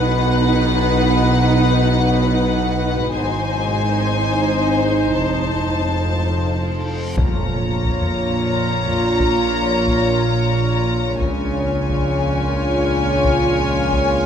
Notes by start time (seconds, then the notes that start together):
Already playing: B1 B2 D#4 B4 F#5
3.12 G#1 G#2 D#4 C5 G#5
5.15 F1 F2 A5, reverse cymbal
7.17 A#1 A#2 F4 C#5 A#5, taiko, impact
7.34 taiko low
7.85 taiko
8.01 taiko low
8.86 taiko low
9.20 taiko
9.88 taiko
11.21 A#1 C#2 C#3 F4 C#5 G#5, taiko
11.90 taiko
13.24 taiko
13.92 taiko